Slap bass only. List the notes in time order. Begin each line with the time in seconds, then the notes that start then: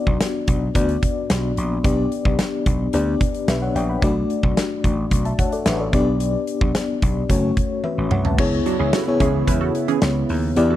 0.07 B1
0.48 B1
0.75 D2
1.31 B1
1.58 A#1
1.84 B1
2.25 B1
2.66 B1
2.93 D2
3.48 B1
3.75 A#1
4.02 B1
4.44 B1
4.84 A1
5.12 B1
5.66 A1
5.94 B1
6.61 B1
7.03 B1
7.30 F#1
7.98 A1
8.11 C2
8.39 C#2
8.80 C#2
9.21 C#2
9.48 E2
10.02 C#2
10.30 D#2
10.57 E2